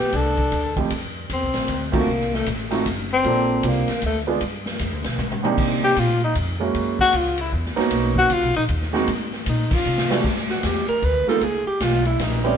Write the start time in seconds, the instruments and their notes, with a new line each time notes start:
Already playing: alto saxophone B3, tenor saxophone G4
0.13 upright bass C2, alto saxophone D4, kick, hi-hat pedal, ride
0.17 tenor saxophone A4
0.37 kick, ride
0.52 upright bass D2, kick, ride
0.76 grand piano F2 A3 C4 E4 G4, kick, ride
0.90 upright bass F2, kick, ride
1.30 upright bass E2, tenor saxophone C4, kick, hi-hat pedal, ride
1.42 upright bass C2
1.54 upright bass A1, snare, ride
1.68 upright bass D2, kick, ride
1.92 grand piano A3 C4 D#4 F4 F#4, kick, crash
1.97 tenor saxophone A#3
2.08 upright bass C2
2.20 snare
2.34 tenor saxophone A3, snare
2.46 upright bass A1, kick, hi-hat pedal, ride
2.71 grand piano A3 C4 D#4 F4 F#4, snare, ride
2.86 upright bass F#1, kick, hi-hat pedal, ride
3.10 tenor saxophone C4, ride
3.24 upright bass A#1, grand piano A#3 C4 D4 F4 A4, kick, ride
3.63 upright bass C2, grand piano A#3 C4 D4 F4 C5, kick, hi-hat pedal, ride
3.68 tenor saxophone A#3
3.88 muted upright bass stroke, snare, ride
4.02 upright bass D2, kick, ride
4.06 tenor saxophone A3
4.27 grand piano G#3 B3 D4 F4 G#4
4.41 upright bass G2, kick, ride
4.66 snare
4.79 upright bass F2, kick, hi-hat pedal, ride
4.92 upright bass D2
5.04 upright bass B1, snare, ride
5.18 upright bass G#2, hi-hat pedal, mid tom
5.32 mid tom
5.43 grand piano A#3 C4 D4 D#4 G4, mid tom
5.58 upright bass C3, kick, crash
5.83 tenor saxophone G4, snare
5.96 upright bass A#2, tenor saxophone F4, kick, hi-hat pedal, ride
6.24 tenor saxophone D#4
6.35 upright bass F2, kick, ride
6.60 grand piano G#3 A#3 C#4 E4 F#4
6.75 upright bass F#2, kick, ride
6.99 tenor saxophone F#4, kick
7.13 upright bass C#2, tenor saxophone F4, kick, hi-hat pedal, ride
7.38 tenor saxophone E4, ride
7.52 upright bass E2, kick
7.66 snare
7.76 grand piano A#3 B3 C#4 D#4 F#4, muted upright bass stroke, snare, ride
7.91 upright bass B1, kick, ride
8.16 tenor saxophone F#4, kick
8.30 upright bass C#2, tenor saxophone F4, kick, hi-hat pedal, ride
8.43 upright bass B1
8.54 upright bass A#1, tenor saxophone D#4, ride
8.68 upright bass D#2, kick, ride
8.82 snare
8.93 grand piano G#3 A#3 C4 D#4 F#4, snare
9.07 upright bass G#2, kick, ride
9.32 snare
9.46 upright bass A#2, tenor saxophone D#4, kick, hi-hat pedal, ride
9.71 tenor saxophone F4, muted upright bass stroke, kick, crash
9.85 upright bass C3, hi-hat pedal
9.98 snare
10.10 grand piano G3 A3 B3 D4 F#4, snare
10.24 upright bass G2, kick, crash
10.49 alto saxophone F#4, snare
10.63 upright bass E2, alto saxophone G4, kick, snare, hi-hat pedal, ride
10.88 alto saxophone A#4, muted upright bass stroke, ride
11.02 upright bass D2, alto saxophone B4, kick, ride
11.27 grand piano G#3 A#3 B3 D#4 F4, alto saxophone A4, snare
11.41 upright bass C#2, alto saxophone G#4, kick, ride
11.66 alto saxophone G4, muted upright bass stroke
11.80 upright bass B1, alto saxophone F4, kick, snare, hi-hat pedal, ride
12.05 alto saxophone E4, ride
12.19 upright bass A#1, alto saxophone D#4, kick, snare, hi-hat pedal, ride
12.44 grand piano G3 B3 C4 D4 E4, alto saxophone C#4, ride